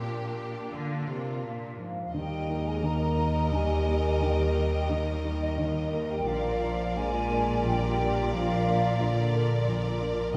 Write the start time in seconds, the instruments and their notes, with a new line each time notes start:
Already playing: cello section A#2, harp F3 A#3 D4 A#4
0.01 harp A#2, grand piano A#2, viola section A#3 D4, violin section G4
0.37 harp A#3
0.72 cello section D3, grand piano A#3 D4 A#4, violin section F4
1.07 cello section C3, harp A#4
1.42 cello section A#2, harp D4
1.77 cello section G#2, french horn section F3, harp F3, flute section F5
2.13 cello section D#2, double bass section D#2, grand piano D#2 D#3, harp D#3, french horn section G3, viola section G3, violin section A#4 D#5, flute section G5
2.31 harp A#3
2.49 grand piano A#3 D#4 A#4, harp D#4
2.66 french horn section G#3, harp A#4, flute section G#5
2.83 grand piano D#2 D#3, french horn section A#3, harp D#4, flute section A#5
3.01 harp D#5
3.18 grand piano A#3 D#4 A#4
3.35 harp D#5
3.52 grand piano D#2 D#3, french horn section G3, flute section G#5
3.71 harp D#4
3.87 grand piano A#3 D#4 A#4
4.05 harp A#3
4.22 grand piano D#2 D#3, harp D#3, french horn section G3, flute section G5
4.40 harp D#4
4.55 grand piano A#3 D#4 A#4, harp A#3
4.74 harp A#4
4.89 grand piano D#2 D#3, french horn section D#3, harp D#4, flute section D#5
5.07 harp D#5
5.25 grand piano A#3 D#4 A#4, harp A#5
5.42 harp D#5
5.58 grand piano D#2 D#3
5.75 harp D#4
5.92 french horn section D#3, grand piano A#3 D#4 A#4, harp A#4, flute section D#5
6.11 french horn section G3, harp A#3, flute section G5
6.27 grand piano A#1 A#2, double bass section A#1, harp A#2, cello section A#2, french horn section F3, viola section F4, violin section A#4 D5, flute section F5
6.45 harp F3
6.63 grand piano A#3 D4 A#4
6.80 harp D4
6.97 grand piano A#1 A#2, french horn section G#3, harp A#4, flute section G#5
7.30 grand piano A#3 D4 A#4, harp D5
7.65 grand piano A#1 A#2, french horn section G3, flute section G5
7.83 harp D4
8.00 grand piano A#3 D4 A#4
8.17 harp F3
8.33 grand piano A#1 A#2, french horn section F3, flute section F5
8.51 harp A#3
8.67 harp F3, grand piano A#3 D4 A#4
9.01 grand piano A#1 A#2, french horn section D3, harp A#4, flute section D5
9.19 harp D4
9.35 grand piano A#3 D4 A#4, harp D5
9.52 harp A#5
9.68 grand piano A#1 A#2, harp A#4
9.86 harp D4
10.02 grand piano A#3 D4 A#4, harp A#3
10.20 harp F3